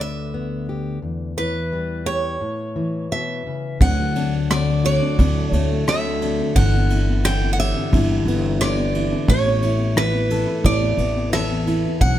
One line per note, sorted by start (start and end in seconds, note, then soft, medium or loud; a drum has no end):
0.00 1.02 D2 medium
0.00 1.37 D3 medium
0.00 0.65 E5 medium
0.34 0.98 B3 medium
0.69 0.99 G4 medium
1.02 2.36 E2 medium
1.37 2.37 E3 medium
1.37 2.08 B4 medium
1.73 2.41 G3 soft
2.06 2.36 G4 medium
2.06 3.42 C#5 medium
2.41 3.11 A2 medium
2.76 3.77 E3 medium
3.12 3.46 B2 medium
3.12 3.78 E5 medium
3.47 3.81 C#3 medium
3.80 4.98 D2 medium
3.80 6.55 D2 medium
3.80 4.15 F#3 medium
3.80 5.01 D4 medium
3.80 4.50 F#5 medium
3.80 kick loud
3.80 ride medium
3.98 4.32 A3 soft
4.16 4.50 F#3 medium
4.16 5.19 D4 medium
4.16 ride soft
4.34 4.67 A3 medium
4.50 5.87 D3 medium
4.50 4.85 F#3 medium
4.50 4.84 D5 medium
4.50 cross-stick loud
4.50 ride medium
4.69 5.36 A3 medium
4.84 5.18 F#3 medium
4.84 5.87 F#4 medium
4.84 5.52 D5 medium
4.84 ride soft
5.02 5.19 D4 medium
5.19 5.48 D2 medium
5.19 5.87 A2 medium
5.19 5.54 F#3 medium
5.19 6.21 D4 medium
5.19 6.39 D4 medium
5.19 kick medium
5.19 ride medium
5.38 5.70 A3 medium
5.52 6.40 D2 medium
5.52 5.87 F#3 medium
5.52 6.52 A3 medium
5.52 5.84 C#5 medium
5.52 ride medium
5.72 6.04 A3 medium
5.87 7.24 D3 medium
5.87 6.22 F#3 medium
5.87 6.52 F#4 medium
5.87 6.55 E5 medium
5.87 cross-stick medium
5.87 ride medium
6.05 6.63 A3 medium
6.22 6.57 F#3 medium
6.22 6.52 D4 medium
6.22 ride soft
6.40 6.57 D4 medium
6.55 7.72 G1 loud
6.55 9.24 G2 medium
6.55 6.91 E3 medium
6.55 7.75 D4 medium
6.55 7.25 F#5 medium
6.55 kick medium
6.55 ride medium
6.76 7.07 B3 medium
6.90 7.24 E3 medium
6.90 7.94 E4 medium
6.90 ride medium
7.09 7.41 B3 medium
7.24 7.93 D3 medium
7.24 7.58 E3 medium
7.24 7.52 G5 medium
7.24 cross-stick medium
7.24 ride medium
7.43 8.08 B3 medium
7.53 7.59 F#5 medium
7.59 7.91 E3 medium
7.59 8.61 G4 medium
7.59 8.64 E5 medium
7.59 ride medium
7.77 7.92 D4 medium
7.92 8.21 G1 loud
7.92 8.60 D3 medium
7.92 8.24 E3 medium
7.92 9.11 D4 medium
7.92 8.96 E4 medium
7.92 kick medium
7.92 ride medium
8.10 8.42 B3 medium
8.25 9.12 G1 medium
8.25 8.59 E3 medium
8.25 9.32 B3 medium
8.25 ride medium
8.44 8.76 B3 medium
8.60 9.29 D3 medium
8.60 8.94 E3 medium
8.60 9.25 G4 medium
8.60 9.29 D5 medium
8.60 cross-stick medium
8.60 ride medium
8.77 9.35 B3 medium
8.95 9.27 E3 medium
8.95 9.64 E4 medium
8.95 ride soft
9.12 9.29 D4 medium
9.28 10.44 A1 loud
9.28 10.65 A2 medium
9.28 9.61 E3 medium
9.28 10.45 E4 medium
9.28 9.97 C#5 medium
9.28 kick medium
9.28 ride medium
9.46 9.77 B3 medium
9.62 9.94 E3 medium
9.62 10.65 E4 medium
9.62 ride medium
9.78 10.11 B3 medium
9.96 10.28 E3 medium
9.96 11.32 E3 medium
9.96 10.65 B4 medium
9.96 cross-stick medium
9.96 ride medium
10.13 10.80 B3 medium
10.29 10.62 E3 medium
10.29 11.33 A4 medium
10.29 ride medium
10.46 10.63 E4 medium
10.64 10.93 A1 medium
10.64 11.97 E2 medium
10.64 10.97 E3 medium
10.64 11.84 E4 medium
10.64 11.66 E4 medium
10.64 11.29 D5 medium
10.64 kick medium
10.64 ride medium
10.81 11.14 B3 medium
10.97 11.85 A1 medium
10.97 11.31 E3 medium
10.97 11.97 B3 medium
10.97 ride medium
11.16 11.49 B3 medium
11.33 11.66 E3 medium
11.33 11.97 E3 medium
11.33 11.98 A4 medium
11.33 12.01 E5 medium
11.33 cross-stick medium
11.33 ride medium
11.51 12.08 B3 medium
11.67 12.00 E3 medium
11.67 11.97 E4 medium
11.67 ride soft
11.85 12.02 E4 medium
12.01 12.19 B1 loud
12.01 12.19 B2 medium
12.01 12.19 E3 medium
12.01 12.19 D4 medium
12.01 12.19 F#5 loud
12.01 kick loud
12.01 ride medium